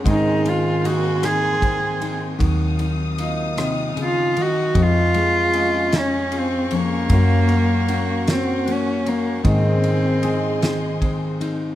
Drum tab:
RD |xxxxxx|xxxxxx|xxxxxx|xxxxxx|
SD |---r--|---r--|---o--|---o--|
BD |o---o-|o-----|o-----|o-----|

RD |xxxxxx|
SD |---o--|
BD |o---o-|